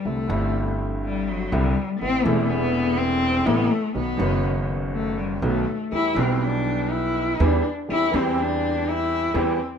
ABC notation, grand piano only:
X:1
M:4/4
L:1/8
Q:1/4=123
K:Clyd
V:1 name="Grand piano" clef=bass
[C,,C,D,G,CE] [G,,,G,,D,G,CE]4- [G,,,G,,D,G,CE] [C,,C,D,G,CE] z | [A,,,A,,C,E,A,E] [E,,,E,,C,E,A,E]4- [E,,,E,,C,E,A,E] [A,,,A,,C,E,A,E] z | [B,,,B,,^D,F,B,F] [F,,,F,,D,F,B,F]4- [F,,,F,,D,F,B,F] [B,,,B,,D,F,B,F] z | [E,,E,G,B,G] [B,,,B,,E,G,B,G]4- [B,,,B,,E,G,B,G] [E,,E,G,B,G] z |
[E,,E,G,CG] [E,,E,G,CG]4- [E,,E,G,CG] [E,,E,G,CG] z |]